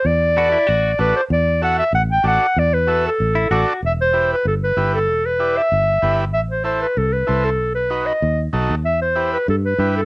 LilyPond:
<<
  \new Staff \with { instrumentName = "Clarinet" } { \time 4/4 \key e \minor \tempo 4 = 191 d''2. b'8 c''8 | d''4 fis''8 e''8 fis''8 g''8 fis''4 | d''8 b'4 a'2 r8 | e''8 c''4 b'8 a'8 b'4 a'8~ |
a'8 b'4 e''2 r8 | e''8 c''8 c''8 b'8 a'8 b'4 a'8~ | a'8 b'4 dis''4 r4. | e''8 c''4 b'8 a'8 b'4 a'8 | }
  \new Staff \with { instrumentName = "Transistor combo organ" } { \time 4/4 \key e \minor r4 <fis' a' b'>8 r4. <fis' a' d''>8 r8 | r4 <fis' a' e''>8 r4. <fis' a' d''>8 r8 | r4 <fis' a' e''>8 r4. <fis' a' d''>8 r8 | r4 <e' g' b'>8 r4. <e' g' b'>8 r8 |
r4 <e' g' d''>8 r4. <e' g' b'>8 r8 | r4 <e' a' c''>8 r4. <e' a' c''>8 r8 | r4 <dis' fis' b'>8 r4. <dis' fis' a'>8 r8 | r4 <e' g' b'>8 r4. <e' g' b'>8 r8 | }
  \new Staff \with { instrumentName = "Clean electric guitar" } { \time 4/4 \key e \minor r4 fis'8 e'8 fis'8. r4 r16 | r1 | r2 r8 e'8 fis'4 | r1 |
r1 | r1 | r1 | r1 | }
  \new Staff \with { instrumentName = "Fingered electric bass" } { \clef bass \time 4/4 \key e \minor e,2 a,,4 a,,8 r8 | e,2 a,,4 a,,8 r8 | e,2 a,,4 a,,8 r8 | e,,2 g,,4 g,,4 |
e,,2 g,,4 g,,4 | a,,2 c,4 c,4 | b,,2 dis,4 b,,8 dis,8 | e,2 g,4 g,4 | }
>>